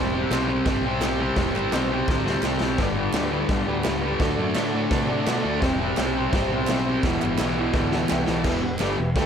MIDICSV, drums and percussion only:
0, 0, Header, 1, 2, 480
1, 0, Start_track
1, 0, Tempo, 353982
1, 1856, Time_signature, 4, 2, 24, 8
1, 12555, End_track
2, 0, Start_track
2, 0, Title_t, "Drums"
2, 414, Note_on_c, 9, 49, 55
2, 421, Note_on_c, 9, 38, 115
2, 439, Note_on_c, 9, 39, 98
2, 550, Note_off_c, 9, 49, 0
2, 557, Note_off_c, 9, 38, 0
2, 574, Note_off_c, 9, 39, 0
2, 887, Note_on_c, 9, 49, 64
2, 893, Note_on_c, 9, 36, 119
2, 894, Note_on_c, 9, 38, 116
2, 1023, Note_off_c, 9, 49, 0
2, 1028, Note_off_c, 9, 36, 0
2, 1030, Note_off_c, 9, 38, 0
2, 1365, Note_on_c, 9, 49, 66
2, 1371, Note_on_c, 9, 38, 115
2, 1388, Note_on_c, 9, 39, 95
2, 1500, Note_off_c, 9, 49, 0
2, 1507, Note_off_c, 9, 38, 0
2, 1523, Note_off_c, 9, 39, 0
2, 1844, Note_on_c, 9, 49, 62
2, 1851, Note_on_c, 9, 38, 118
2, 1852, Note_on_c, 9, 36, 96
2, 1980, Note_off_c, 9, 49, 0
2, 1986, Note_off_c, 9, 38, 0
2, 1988, Note_off_c, 9, 36, 0
2, 2112, Note_on_c, 9, 39, 66
2, 2248, Note_off_c, 9, 39, 0
2, 2332, Note_on_c, 9, 49, 68
2, 2339, Note_on_c, 9, 38, 101
2, 2348, Note_on_c, 9, 39, 95
2, 2468, Note_off_c, 9, 49, 0
2, 2475, Note_off_c, 9, 38, 0
2, 2483, Note_off_c, 9, 39, 0
2, 2820, Note_on_c, 9, 36, 112
2, 2838, Note_on_c, 9, 38, 63
2, 2956, Note_off_c, 9, 36, 0
2, 2973, Note_off_c, 9, 38, 0
2, 3075, Note_on_c, 9, 38, 75
2, 3211, Note_off_c, 9, 38, 0
2, 3291, Note_on_c, 9, 39, 91
2, 3303, Note_on_c, 9, 38, 87
2, 3427, Note_off_c, 9, 39, 0
2, 3438, Note_off_c, 9, 38, 0
2, 3534, Note_on_c, 9, 38, 104
2, 3670, Note_off_c, 9, 38, 0
2, 3769, Note_on_c, 9, 49, 57
2, 3776, Note_on_c, 9, 36, 99
2, 3776, Note_on_c, 9, 38, 103
2, 3905, Note_off_c, 9, 49, 0
2, 3911, Note_off_c, 9, 36, 0
2, 3912, Note_off_c, 9, 38, 0
2, 4249, Note_on_c, 9, 39, 90
2, 4250, Note_on_c, 9, 49, 65
2, 4257, Note_on_c, 9, 38, 116
2, 4385, Note_off_c, 9, 39, 0
2, 4386, Note_off_c, 9, 49, 0
2, 4393, Note_off_c, 9, 38, 0
2, 4728, Note_on_c, 9, 49, 60
2, 4733, Note_on_c, 9, 36, 113
2, 4734, Note_on_c, 9, 38, 123
2, 4863, Note_off_c, 9, 49, 0
2, 4869, Note_off_c, 9, 36, 0
2, 4870, Note_off_c, 9, 38, 0
2, 5210, Note_on_c, 9, 39, 88
2, 5210, Note_on_c, 9, 49, 62
2, 5217, Note_on_c, 9, 38, 103
2, 5345, Note_off_c, 9, 39, 0
2, 5346, Note_off_c, 9, 49, 0
2, 5353, Note_off_c, 9, 38, 0
2, 5691, Note_on_c, 9, 49, 63
2, 5693, Note_on_c, 9, 36, 102
2, 5698, Note_on_c, 9, 38, 113
2, 5826, Note_off_c, 9, 49, 0
2, 5829, Note_off_c, 9, 36, 0
2, 5833, Note_off_c, 9, 38, 0
2, 6165, Note_on_c, 9, 49, 75
2, 6171, Note_on_c, 9, 38, 107
2, 6175, Note_on_c, 9, 39, 83
2, 6300, Note_off_c, 9, 49, 0
2, 6307, Note_off_c, 9, 38, 0
2, 6310, Note_off_c, 9, 39, 0
2, 6655, Note_on_c, 9, 49, 71
2, 6657, Note_on_c, 9, 36, 121
2, 6661, Note_on_c, 9, 38, 100
2, 6790, Note_off_c, 9, 49, 0
2, 6793, Note_off_c, 9, 36, 0
2, 6797, Note_off_c, 9, 38, 0
2, 7138, Note_on_c, 9, 49, 67
2, 7145, Note_on_c, 9, 38, 114
2, 7151, Note_on_c, 9, 39, 92
2, 7274, Note_off_c, 9, 49, 0
2, 7280, Note_off_c, 9, 38, 0
2, 7287, Note_off_c, 9, 39, 0
2, 7620, Note_on_c, 9, 36, 99
2, 7621, Note_on_c, 9, 49, 60
2, 7627, Note_on_c, 9, 38, 96
2, 7756, Note_off_c, 9, 36, 0
2, 7756, Note_off_c, 9, 49, 0
2, 7763, Note_off_c, 9, 38, 0
2, 8095, Note_on_c, 9, 49, 61
2, 8097, Note_on_c, 9, 39, 90
2, 8101, Note_on_c, 9, 38, 125
2, 8230, Note_off_c, 9, 49, 0
2, 8233, Note_off_c, 9, 39, 0
2, 8237, Note_off_c, 9, 38, 0
2, 8578, Note_on_c, 9, 49, 55
2, 8581, Note_on_c, 9, 36, 126
2, 8584, Note_on_c, 9, 38, 111
2, 8713, Note_off_c, 9, 49, 0
2, 8717, Note_off_c, 9, 36, 0
2, 8720, Note_off_c, 9, 38, 0
2, 9047, Note_on_c, 9, 39, 97
2, 9060, Note_on_c, 9, 49, 65
2, 9067, Note_on_c, 9, 38, 123
2, 9183, Note_off_c, 9, 39, 0
2, 9196, Note_off_c, 9, 49, 0
2, 9203, Note_off_c, 9, 38, 0
2, 9536, Note_on_c, 9, 36, 107
2, 9541, Note_on_c, 9, 49, 61
2, 9548, Note_on_c, 9, 38, 107
2, 9672, Note_off_c, 9, 36, 0
2, 9677, Note_off_c, 9, 49, 0
2, 9683, Note_off_c, 9, 38, 0
2, 9790, Note_on_c, 9, 39, 70
2, 9925, Note_off_c, 9, 39, 0
2, 9998, Note_on_c, 9, 49, 69
2, 10005, Note_on_c, 9, 38, 111
2, 10014, Note_on_c, 9, 39, 101
2, 10133, Note_off_c, 9, 49, 0
2, 10140, Note_off_c, 9, 38, 0
2, 10150, Note_off_c, 9, 39, 0
2, 10490, Note_on_c, 9, 38, 68
2, 10491, Note_on_c, 9, 36, 110
2, 10626, Note_off_c, 9, 36, 0
2, 10626, Note_off_c, 9, 38, 0
2, 10736, Note_on_c, 9, 38, 78
2, 10872, Note_off_c, 9, 38, 0
2, 10967, Note_on_c, 9, 38, 96
2, 10970, Note_on_c, 9, 39, 104
2, 11103, Note_off_c, 9, 38, 0
2, 11106, Note_off_c, 9, 39, 0
2, 11210, Note_on_c, 9, 38, 104
2, 11346, Note_off_c, 9, 38, 0
2, 11446, Note_on_c, 9, 49, 59
2, 11446, Note_on_c, 9, 57, 107
2, 11452, Note_on_c, 9, 36, 97
2, 11453, Note_on_c, 9, 38, 110
2, 11582, Note_off_c, 9, 49, 0
2, 11582, Note_off_c, 9, 57, 0
2, 11588, Note_off_c, 9, 36, 0
2, 11589, Note_off_c, 9, 38, 0
2, 11916, Note_on_c, 9, 39, 87
2, 11932, Note_on_c, 9, 49, 56
2, 11938, Note_on_c, 9, 38, 118
2, 12051, Note_off_c, 9, 39, 0
2, 12067, Note_off_c, 9, 49, 0
2, 12074, Note_off_c, 9, 38, 0
2, 12417, Note_on_c, 9, 36, 105
2, 12421, Note_on_c, 9, 49, 55
2, 12428, Note_on_c, 9, 38, 119
2, 12552, Note_off_c, 9, 36, 0
2, 12555, Note_off_c, 9, 38, 0
2, 12555, Note_off_c, 9, 49, 0
2, 12555, End_track
0, 0, End_of_file